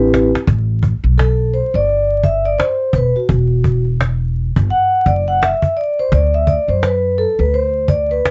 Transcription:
0.00 0.31 A1 medium
0.00 0.27 C4 medium
0.00 0.28 E4 medium
0.00 0.29 G4 medium
0.00 0.29 B4 medium
0.14 cajon slap loud
0.35 cajon slap medium
0.47 0.91 A1 loud
0.47 cajon bass loud
0.83 cajon bass medium
1.04 1.59 B1 medium
1.04 cajon slap soft
1.18 1.54 A4 medium
1.18 cajon slap loud
1.54 1.75 C5 medium
1.74 2.55 G1 medium
1.74 2.21 D5 medium
1.74 cajon slap soft
1.89 cajon slap soft
2.23 2.46 E5 medium
2.23 cajon bass medium
2.44 2.58 D5 loud
2.44 cajon slap soft
2.58 2.95 C5 medium
2.58 cajon slap loud
2.93 3.10 E1 medium
2.93 3.17 B4 medium
2.93 cajon bass medium
3.15 3.82 F#4 medium
3.15 cajon slap soft
3.29 4.52 E1 loud
3.29 cajon bass loud
3.64 cajon bass medium
3.85 cajon slap soft
4.01 cajon slap loud
4.56 4.67 G1 medium
4.56 cajon bass loud
4.70 5.07 F#5 loud
4.70 cajon slap soft
5.06 5.50 F#1 medium
5.06 5.16 D5 medium
5.06 cajon bass medium
5.27 5.42 F#5 medium
5.27 cajon slap soft
5.42 5.74 E5 medium
5.42 cajon slap loud
5.62 cajon bass medium
5.77 5.98 D5 medium
5.99 6.13 C5 medium
5.99 cajon slap soft
6.12 6.56 D2 loud
6.12 6.32 D5 medium
6.12 cajon bass loud
6.34 6.48 E5 loud
6.47 6.69 D5 medium
6.47 cajon bass medium
6.68 7.23 F#2 medium
6.68 6.83 C5 medium
6.68 cajon slap soft
6.83 7.19 B4 medium
6.83 cajon slap loud
7.18 7.40 A4 loud
7.39 8.19 D2 medium
7.39 7.52 B4 medium
7.39 cajon slap soft
7.53 7.86 C5 medium
7.53 cajon slap soft
7.88 8.10 D5 medium
7.88 cajon bass medium
8.09 8.31 B4 medium
8.09 cajon slap soft
8.25 cajon slap loud

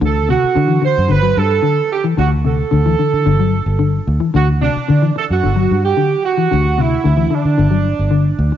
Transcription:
0.01 0.35 D2 medium
0.01 0.19 D3 medium
0.06 0.29 A4 medium
0.29 0.46 C3 medium
0.29 0.80 F#4 medium
0.44 muted fingered electric bass stroke soft
0.55 0.64 D3 medium
0.55 0.78 D3 medium
0.68 0.77 E3 medium
0.82 1.00 D3 medium
0.82 1.09 C5 loud
0.98 1.08 F#2 medium
1.08 1.33 G1 medium
1.08 1.18 D3 medium
1.08 1.37 B4 loud
1.23 1.41 F#3 medium
1.37 1.59 G2 medium
1.37 1.92 A4 medium
1.62 1.81 D3 medium
1.92 2.04 G4 medium
2.04 2.13 E3 medium
2.17 2.63 D2 loud
2.17 2.35 D3 medium
2.17 2.30 F#4 medium
2.45 2.62 C3 medium
2.45 4.04 A4 medium
2.71 2.95 D2 medium
2.71 2.80 D3 medium
2.86 2.95 E3 medium
2.99 3.17 D3 medium
3.14 3.24 D3 medium
3.26 3.60 G1 medium
3.26 3.35 D3 medium
3.40 3.57 F#3 medium
3.66 4.00 G1 medium
3.79 3.97 D3 medium
4.07 4.19 D2 medium
4.20 4.29 E3 medium
4.34 4.68 D2 medium
4.34 4.52 D3 medium
4.34 4.47 F#4 medium
4.61 4.79 C3 medium
4.61 5.12 D4 medium
4.76 muted fingered electric bass stroke soft
4.88 4.97 D3 medium
4.88 5.12 D3 medium
5.02 5.11 E3 medium
5.16 5.24 A4 medium
5.16 muted clean electric guitar stroke medium
5.30 5.41 F#2 medium
5.30 5.81 F#4 medium
5.43 5.66 G1 medium
5.43 5.52 D3 medium
5.56 5.74 F#3 medium
5.71 5.93 G2 medium
5.84 6.21 G4 medium
5.97 6.14 D3 medium
6.25 6.78 F#4 loud
6.37 6.46 E3 medium
6.51 6.97 D2 loud
6.51 6.69 D3 medium
6.78 6.95 C3 medium
6.78 7.33 E4 medium
7.04 7.27 D2 medium
7.04 7.13 D3 medium
7.17 7.26 E3 medium
7.30 7.48 D3 medium
7.30 8.40 D4 medium
7.45 7.56 D3 medium
7.58 7.92 G1 medium
7.58 7.67 D3 medium
7.71 7.89 F#3 medium
7.99 8.32 G1 medium
8.11 8.29 D3 medium
8.39 8.50 D2 medium
8.52 muted clean electric guitar stroke medium

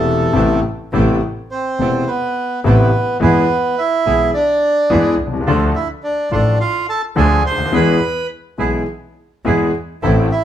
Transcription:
0.00 0.30 E1 medium
0.00 0.30 E2 medium
0.00 0.28 C3 medium
0.00 0.29 A3 medium
0.00 0.60 A3 medium
0.00 0.30 B3 medium
0.00 0.31 E4 medium
0.00 0.30 A4 medium
0.00 0.60 A4 medium
0.33 0.58 A1 medium
0.33 0.59 A1 medium
0.33 0.58 A2 medium
0.33 0.58 C3 medium
0.33 0.59 A3 medium
0.33 0.58 B3 medium
0.33 0.59 B3 medium
0.33 0.59 C4 medium
0.33 0.58 E4 medium
0.33 0.59 A4 medium
0.92 1.17 A1 medium
0.92 1.17 A2 medium
0.92 1.17 C3 medium
0.92 1.17 A3 medium
0.92 1.17 B3 medium
0.92 1.17 C4 medium
0.92 1.17 E4 medium
0.92 1.17 A4 medium
1.51 2.05 C4 medium
1.51 2.10 C5 medium
1.79 2.03 E1 soft
1.79 2.04 E1 medium
1.79 2.03 E2 soft
1.79 2.03 C3 soft
1.79 2.03 A3 soft
1.79 2.03 B3 soft
1.79 2.04 B3 medium
1.79 2.04 C4 soft
1.79 2.04 E4 soft
1.79 2.04 A4 medium
2.07 2.61 B3 medium
2.07 2.60 B4 medium
2.64 2.88 A1 medium
2.64 2.88 A2 medium
2.64 2.88 C3 medium
2.64 2.88 A3 medium
2.64 2.88 B3 medium
2.64 2.89 B3 medium
2.64 3.18 B3 medium
2.64 2.89 C4 medium
2.64 2.88 E4 medium
2.64 2.89 A4 medium
2.64 3.17 B4 medium
3.20 3.44 E2 medium
3.20 3.45 E2 loud
3.20 3.44 E3 medium
3.20 3.44 G#3 medium
3.20 3.44 B3 medium
3.20 3.45 B3 medium
3.20 3.45 E4 medium
3.20 3.45 G#4 medium
3.20 3.80 B4 medium
3.24 3.75 B3 medium
3.78 4.31 E4 medium
3.78 4.30 E5 medium
4.06 4.29 B1 medium
4.06 4.30 B1 soft
4.06 4.30 B2 soft
4.06 4.29 E3 soft
4.06 4.30 G#3 soft
4.06 4.29 B3 medium
4.06 4.30 B3 soft
4.06 4.29 E4 soft
4.06 4.29 G#4 medium
4.06 4.30 G#4 medium
4.34 5.15 D4 medium
4.34 5.14 D5 medium
4.90 5.14 E2 medium
4.90 5.14 E3 medium
4.90 5.14 G#3 medium
4.90 5.14 B3 medium
4.90 5.14 E4 medium
4.90 5.14 G#4 medium
5.19 5.46 C2 soft
5.27 5.33 B1 soft
5.33 5.40 C2 medium
5.40 5.47 C#2 medium
5.46 5.70 D2 medium
5.46 5.71 D2 medium
5.46 5.71 D3 medium
5.46 5.71 F3 medium
5.46 5.71 A3 medium
5.46 5.70 D4 medium
5.46 5.71 D4 medium
5.46 5.70 F4 medium
5.46 5.70 A4 medium
5.46 5.71 A4 medium
5.75 5.88 E4 medium
5.75 5.88 E5 medium
6.03 6.29 D4 medium
6.03 6.32 D5 medium
6.31 6.55 A1 medium
6.31 6.55 A1 soft
6.31 6.55 A2 medium
6.31 6.55 F3 soft
6.31 6.55 A3 soft
6.31 6.55 D4 medium
6.31 6.55 D4 soft
6.31 6.59 D4 medium
6.31 6.55 F4 medium
6.31 6.55 A4 medium
6.31 6.56 A4 medium
6.31 6.59 D5 medium
6.60 6.86 F4 medium
6.60 6.87 F5 medium
6.89 7.02 A4 medium
6.89 7.02 A5 loud
7.16 7.40 D2 medium
7.16 7.40 D3 medium
7.16 7.40 F3 medium
7.16 7.40 A3 medium
7.16 7.40 D4 medium
7.16 7.40 F4 medium
7.16 7.43 G#4 medium
7.16 7.40 A4 medium
7.16 7.43 G#5 medium
7.44 7.72 D2 soft
7.44 7.72 C5 medium
7.44 7.75 C6 loud
7.51 7.59 C#2 soft
7.58 7.66 D2 medium
7.66 7.73 D#2 medium
7.72 7.97 E2 medium
7.72 7.97 E3 medium
7.72 7.97 G#3 medium
7.72 7.97 B3 medium
7.72 7.97 E4 medium
7.72 7.97 G#4 medium
7.72 8.27 B4 medium
7.72 8.27 B5 medium
8.58 8.83 B1 medium
8.58 8.83 B1 soft
8.58 8.83 B2 soft
8.58 8.82 E3 soft
8.58 8.82 G#3 soft
8.58 8.83 B3 soft
8.58 8.83 E4 medium
8.58 8.83 G#4 medium
8.58 8.83 G#4 soft
9.44 9.69 E2 medium
9.44 9.69 E3 medium
9.44 9.69 G#3 medium
9.44 9.69 B3 medium
9.44 9.70 E4 medium
9.44 9.69 G#4 medium
9.44 9.70 G#4 medium
10.02 10.27 A1 medium
10.02 10.27 A2 medium
10.02 10.27 E3 medium
10.02 10.27 A3 medium
10.02 10.27 C4 medium
10.02 10.27 E4 medium
10.02 10.27 A4 medium
10.31 10.44 E4 medium
10.31 10.44 E5 medium

